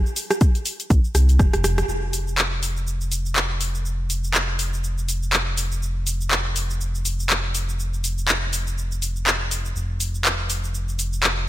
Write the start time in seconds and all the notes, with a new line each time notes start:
0.06 shaker
0.16 open hi-hat, shaker
0.31 cross-stick, closed hi-hat, shaker
0.41 kick, closed hi-hat, shaker
0.55 closed hi-hat, shaker
0.65 open hi-hat, shaker
0.80 closed hi-hat, shaker
0.90 C2, kick, closed hi-hat, shaker
1.05 shaker
1.15 C2, cross-stick, open hi-hat, shaker
1.29 closed hi-hat, shaker
1.39 F1, kick, cross-stick, shaker
1.53 F1, cross-stick, closed hi-hat, shaker
1.64 cross-stick, open hi-hat, shaker
1.78 cross-stick, closed hi-hat, shaker
1.89 F1, shaker
2.13 open hi-hat, shaker
2.28 shaker
2.38 clap, shaker
2.63 open hi-hat, shaker
2.77 shaker
2.87 shaker
3.01 shaker
3.12 open hi-hat, shaker
3.26 shaker
3.36 clap, shaker
3.61 open hi-hat, shaker
3.75 shaker
3.85 shaker
4.10 open hi-hat, shaker
4.24 shaker
4.34 clap, shaker
4.59 open hi-hat, shaker
4.74 shaker
4.84 shaker
4.98 shaker
5.09 open hi-hat, shaker
5.23 shaker
5.33 clap, shaker
5.57 open hi-hat, shaker
5.72 shaker
5.82 shaker
6.07 open hi-hat, shaker
6.21 shaker
6.31 clap, shaker
6.56 open hi-hat, shaker
6.70 shaker
6.81 shaker
6.95 shaker
7.05 open hi-hat, shaker
7.20 shaker
7.30 clap, shaker
7.55 open hi-hat, shaker
7.69 shaker
7.80 shaker
7.94 shaker
8.04 open hi-hat, shaker
8.18 shaker
8.28 clap, shaker
8.53 open hi-hat, shaker
8.67 shaker
8.78 shaker
8.92 shaker
9.02 open hi-hat, shaker
9.16 shaker
9.27 clap, shaker
9.51 open hi-hat, shaker
9.65 shaker
9.76 F1, shaker
10.00 open hi-hat, shaker
10.15 shaker
10.25 clap, shaker
10.50 open hi-hat, shaker
10.64 shaker
10.75 shaker
10.89 shaker
10.99 open hi-hat, shaker
11.13 shaker
11.23 clap, shaker